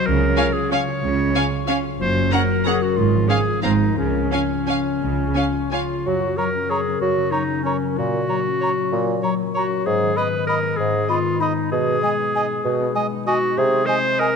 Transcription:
0.06 double bass section C#2, harp C#3, cello section C#3, clarinet A#4
0.22 harp C#4
0.36 viola section C#4, harp F4, violin section F5 G#5
0.53 clarinet G#4, harp C#5
0.72 viola section C#4, harp F4, clarinet C#5, violin section F5 G#5
0.88 harp G#4
1.04 double bass section C#2, cello section C#3, harp C#3
1.20 harp C#4
1.35 viola section C#4, harp F4, violin section F5 G#5
1.53 harp C#5
1.67 viola section C#4, harp F4, violin section F5 G#5
1.84 harp G#4
1.99 double bass section F#1, cello section F#2, harp F#2, clarinet C5
2.15 harp F#3
2.31 viola section C#4, harp A#4, clarinet A#4, violin section F#5 A#5
2.48 harp F#4
2.65 viola section C#4, clarinet G#4, harp A#4, violin section F#5 A#5
2.82 harp C#4, clarinet F#4
2.97 double bass section G#1, cello section G#2, harp G#2, clarinet F4
3.13 harp F3
3.28 viola section C#4, clarinet G#4, harp G#4, violin section F5 G#5
3.47 harp F4
3.62 double bass section G#1, harp G#2, cello section G#2, viola section C4, clarinet D#4, violin section F5 A#5
3.81 harp C4 A#4
3.97 double bass section C#2, harp C#3, cello section C#3, clarinet C#4
4.15 harp C#4
4.32 viola section C#4, harp F4, violin section F5 G#5
4.51 harp C#5
4.68 viola section C#4, harp F4, violin section F5 G#5
4.86 harp G#4
5.02 double bass section C#2, harp C#3, cello section C#3
5.18 harp C#4
5.35 viola section C#4, harp F4, violin section F5 G#5
5.54 harp C#5
5.71 viola section C#4, clarinet F4, harp F4, violin section F5 G#5
5.89 harp G#4
6.06 harp F#2, bassoon F#3, clarinet F#4
6.21 harp C#3
6.37 harp F#3, clarinet A#4, cor anglais C#5, flute A#5
6.54 harp C#4
6.70 clarinet G#4, harp A#4, cor anglais C#5, flute A#5
6.86 harp C#4
7.00 harp F#2, bassoon F#3, clarinet F#4
7.16 harp C#3
7.31 harp F#3, clarinet D#4, cor anglais C#5, flute A#5
7.49 harp C#4
7.63 clarinet C#4, harp A#4, cor anglais C#5, flute A#5
7.82 harp C#4
7.98 harp A#2, bassoon A#2, clarinet F#4
8.14 harp A#3
8.28 harp F#3, cor anglais C#5, flute A#5
8.45 harp C#4
8.61 cor anglais C#5, harp C#5, flute A#5
8.77 harp C#4
8.92 harp A#2, bassoon A#2
9.07 harp A#3
9.23 harp F#3, cor anglais C#5, flute A#5
9.39 harp C#4
9.55 clarinet F#4, cor anglais C#5, harp C#5, flute A#5
9.71 harp C#4
9.86 bassoon G#2, harp G#2, clarinet G#4
10.01 harp D#3
10.16 harp B3, clarinet B4, cor anglais D#5, flute B5
10.33 harp D#4
10.47 harp G#4, clarinet A#4, cor anglais D#5, flute B5
10.63 harp D#4
10.77 harp G#2, bassoon G#2, clarinet G#4
10.93 harp D#3
11.08 harp B3, clarinet F4, cor anglais D#5, flute B5
11.24 harp D#4
11.39 clarinet D#4, harp G#4, cor anglais D#5, flute B5
11.56 harp D#4
11.71 bassoon B2, harp B2, clarinet G#4
11.87 harp B3
12.02 harp G#3, cor anglais D#5, flute G#5
12.19 harp D#4
12.35 cor anglais D#5, flute G#5
12.51 harp D#4
12.65 bassoon B2, harp B2
12.80 harp B3
12.95 harp G#3, cor anglais D#5, flute G#5
13.13 harp D#4
13.27 clarinet F#4, harp G#4, cor anglais D#5, flute G#5
13.43 harp D#4
13.57 harp C3, bassoon C3, clarinet G#4
13.72 harp C4
13.86 harp G#3, clarinet C5, cor anglais D#5, flute G#5
14.04 harp D#4
14.19 harp G#4, clarinet A#4, cor anglais D#5, flute G#5

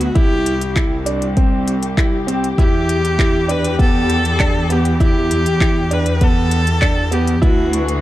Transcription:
Already playing: cello section D2, viola F#4
0.01 closed hi-hat
0.15 cello section C2, grand piano E4, viola G4, kick, closed hi-hat
0.46 closed hi-hat
0.61 string section G4, closed hi-hat
0.76 grand piano E4, kick, clap, closed hi-hat
1.06 grand piano D4, closed hi-hat
1.22 closed hi-hat
1.37 grand piano C4, kick, closed hi-hat
1.68 closed hi-hat
1.83 closed hi-hat
1.97 grand piano E4, kick, clap, closed hi-hat
2.27 grand piano C4, closed hi-hat
2.44 closed hi-hat
2.58 cello section E2, grand piano E4, viola G4, kick, closed hi-hat
2.89 closed hi-hat
3.05 closed hi-hat
3.19 grand piano E4, kick, clap, closed hi-hat
3.48 grand piano D4, viola B4, closed hi-hat
3.64 closed hi-hat
3.79 grand piano B3, viola A4, kick, closed hi-hat
4.10 closed hi-hat
4.25 closed hi-hat
4.40 grand piano D4, kick, clap, closed hi-hat
4.70 grand piano B3, viola G4, closed hi-hat
4.85 closed hi-hat
5.00 grand piano E4, viola G4, kick, closed hi-hat
5.31 closed hi-hat
5.46 closed hi-hat
5.61 grand piano E4, kick, clap, closed hi-hat
5.91 grand piano D4, viola B4, closed hi-hat
6.06 closed hi-hat
6.21 grand piano B3, viola A4, kick, closed hi-hat
6.51 closed hi-hat
6.67 closed hi-hat
6.82 grand piano D4, kick, clap, closed hi-hat
7.11 grand piano B3, viola G4, closed hi-hat
7.27 closed hi-hat
7.42 cello section D2, string section E3, grand piano E4, viola F#4, kick, closed hi-hat
7.63 string section F#4
7.73 closed hi-hat
7.88 closed hi-hat

